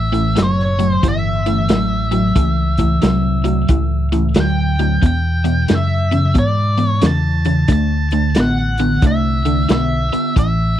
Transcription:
Already playing: A1 E5
0.13 A2 E3, closed hi-hat
0.36 F#1 A2 F#3, snare, closed hi-hat
0.43 C#5
0.59 snare
0.79 A2 F#3, closed hi-hat
0.89 C5
1.03 G1 A2 E3, kick, closed hi-hat
1.09 E5
1.46 A2 E3, closed hi-hat
1.69 A1 A2 F#3, snare, closed hi-hat
2.12 A2 F#3, closed hi-hat
2.36 C#2 A2 E3, kick, closed hi-hat
2.77 A2 E3, kick, closed hi-hat
3.02 C2 A2 F#3, snare, closed hi-hat
3.44 A2 F#3, closed hi-hat
3.68 C#2 A2 E3, kick, closed hi-hat
4.12 A2 E3, closed hi-hat
4.34 D2 A2 F#3, snare, closed hi-hat
4.40 G5
4.79 A2 F#3, closed hi-hat
5.02 E2 B2, kick, closed hi-hat
5.06 G5
5.44 E2 B2, closed hi-hat
5.68 E2 F#2 C#3, snare, closed hi-hat
5.75 E5
6.12 E2 C#3, closed hi-hat
6.35 E2 G#2 B2, kick, closed hi-hat
6.39 D5
6.77 E2 B2, closed hi-hat
6.86 C#5
7.01 E2 C#3, snare, closed hi-hat
7.06 A5
7.45 E2 C#3, closed hi-hat
7.68 D2 D3 A3, kick, closed hi-hat
7.73 A5
8.11 D3 A3, closed hi-hat
8.35 A1 D3 B3, snare, closed hi-hat
8.40 F#5
8.78 D3 B3, closed hi-hat
9.02 C2 D3 A3, kick, closed hi-hat
9.07 E5
9.45 D3 A3, closed hi-hat
9.69 B1 D3 B3 E5, snare, closed hi-hat
10.13 D3 B3, muted fingered electric bass stroke, closed hi-hat
10.36 A1 A2 E3 E5, kick, closed hi-hat

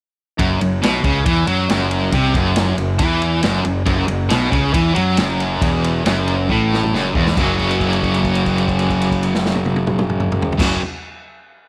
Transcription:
0.38 F#1 F#2, kick, ride
0.61 F#1 F#2, ride
0.82 B1 B2, snare, ride
1.04 C#2 C#3, kick, ride
1.25 E2 E3, kick, ride
1.47 F#2 F#3, ride
1.69 F#1 F#2, snare, ride
1.91 ride
2.12 C2 C3, kick, ride
2.34 F#1 F#2, kick, ride
2.56 snare, ride
2.77 F#1 F#2, ride
2.99 E2 E3, kick, ride
3.22 ride
3.43 F#1 F#2, snare, ride
3.65 F#1 F#2, ride
3.86 F#1 F#2, kick, ride
4.07 F#1 F#2, ride
4.29 B1 B2, snare, ride
4.51 C#2 C#3, kick, ride
4.73 E2 E3, kick, ride
4.95 F#2 F#3, ride
5.17 F#1 F#2, snare, ride
5.40 ride
5.61 E1 E2, kick, ride
5.84 ride
6.05 F#1 F#2, snare, ride
6.28 ride
6.49 A1 A2, kick
6.74 snare
6.83 mid tom
6.92 F#1 F#2, snare
7.15 E1 E2, kick
7.27 snare
7.37 F#1 F#2 C#3 F#3 A#3 C#4, kick, crash
7.41 F#4
7.59 kick, crash
7.71 crash
7.81 kick, crash
7.93 crash
8.03 kick, crash
8.14 crash
8.24 kick, crash
8.35 crash
8.46 kick, crash
8.58 crash
8.68 kick, crash
8.79 crash
8.90 kick, crash
9.02 crash
9.12 kick, crash
9.23 crash
9.35 snare
9.46 snare
9.55 high tom
9.66 high tom
9.76 high tom
9.87 mid tom
9.99 mid tom
10.10 mid tom
10.20 mid tom
10.32 mid tom
10.42 floor tom
10.52 floor tom
10.57 F#1 F#2 C#3 F#3 A#3 C#4 F#4, kick, snare, crash

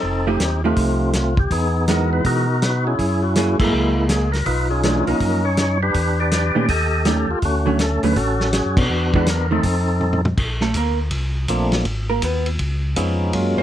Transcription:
Already playing: C4 D#4 A4
0.03 F1
0.27 F3 A3 D#4 G4
0.40 D#2 G4, snare, closed hi-hat
0.64 F3 A3 C4 D#4 F4 G4
0.76 C2, kick, open hi-hat
1.13 F4, snare, closed hi-hat
1.37 G4, kick
1.50 E2 B3 D#4 G#4, kick, open hi-hat
1.88 E3 G#3 D#4 F#4 A#4, snare, closed hi-hat
2.13 B4
2.24 B2 D#4 F#4 A#4, kick, open hi-hat
2.62 B4, snare, closed hi-hat
2.87 C#4 E4 G#4
2.99 F#2, kick, open hi-hat
3.22 F#4
3.35 F#3 A#3 E4 F#4 G#4, snare, closed hi-hat
3.60 G2 G#3 A#3 E4, kick, crash
3.73 C#2
4.09 G#4, snare, closed hi-hat
4.32 A#4, snare, open hi-hat
4.46 B1 D#4 F4 B4, kick, open hi-hat
4.70 C#4 D#4 G#4
4.83 E3 A3 D4, snare, closed hi-hat
5.07 B1 F3 A#3 C#4 D#4 A#4, open hi-hat
5.20 F#2, kick, open hi-hat
5.45 C#5
5.57 C#5, snare, closed hi-hat
5.83 D4 G4 B4
5.94 E2, kick, open hi-hat
6.20 G4 B4 D5
6.31 snare, closed hi-hat
6.55 A#2 D#3 A3 C#4 G4 D5
6.68 D#2 G4 A4 D#5, kick, open hi-hat
7.05 D#3 A3 C#4 D#4 G4, snare, closed hi-hat
7.28 D#2 F4
7.42 D2 A3 C#4 F#4, kick, open hi-hat
7.66 D3 F#3 A3 C#4
7.79 A4, snare, closed hi-hat
8.03 D#2 D3 F#3 A3 C#4 B4, open hi-hat
8.16 A1 C#4 F#4 A4, kick, open hi-hat
8.41 snare
8.53 G#4, snare, closed hi-hat
8.65 F#2
8.77 B2 B3 D4 F#4, kick, crash
8.89 E2
9.14 E3 G#3 D4 F#4 B4, kick
9.26 A#4, snare, closed hi-hat
9.51 D#3 A3 C4 D#4 A4
9.63 F2, kick, open hi-hat
10.01 mid tom
10.13 mid tom
10.25 mid tom
10.38 A#1, kick, crash
10.61 A3 A4, snare
10.74 D2 A#3 A#4, kick, hi-hat pedal, ride
11.11 C2, kick, ride
11.48 A#1 F3 A3 A#3 C4 D4, kick, hi-hat pedal, ride
11.72 snare, ride
11.85 G#1, kick, ride
12.10 A#3 A#4
12.22 D#2 B3 B4, kick, hi-hat pedal, ride
12.46 ride
12.59 C#2, kick, ride
12.96 F2 F3 G#3 B3 C#4 D#4, kick, hi-hat pedal, ride
13.33 F#2 F#3 G#3 A#3 C#4 F4, kick, ride
13.57 F#2 C4 C5

